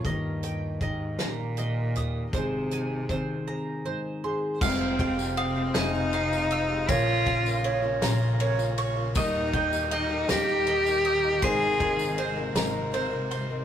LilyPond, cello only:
\new Staff \with { instrumentName = "Cello" } { \time 6/8 \key f \minor \tempo 4. = 53 g,4 aes,8 bes,4. | c2 r4 | c'4 c'8 ees'4. | f'4 r2 |
ees'4 ees'8 g'4. | aes'4 r2 | }